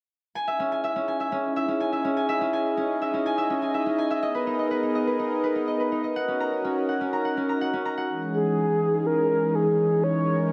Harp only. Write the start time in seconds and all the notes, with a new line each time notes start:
0.35 G#5
0.48 E5
0.60 C#4
0.72 G#5
0.84 E5
0.96 C#4
1.08 G#5
1.20 E5
1.32 C#4
1.56 E5
1.68 C#4
1.80 G#5
1.93 E5
2.05 C#4
2.17 G#5
2.29 E5
2.41 C#4
2.53 G#5
2.77 C#4
3.02 E5
3.14 C#4
3.26 G#5
3.38 E5
3.50 C#4
3.62 G#5
3.74 E5
3.86 C#4
3.98 G#5
4.10 E5
4.23 D#5
4.35 B4
4.47 D#4
4.59 D#5
4.71 B4
4.83 D#4
4.95 D#5
5.07 B4
5.19 D#4
5.43 B4
5.55 D#4
5.68 D#5
5.80 B4
5.92 D#4
6.04 D#5
6.16 F#5
6.28 C#4
6.40 A#5
6.64 C#4
6.89 F#5
7.01 C#4
7.13 A#5
7.25 F#5
7.37 C#4
7.49 A#5
7.61 F#5
7.73 C#4
7.85 A#5
7.98 F#5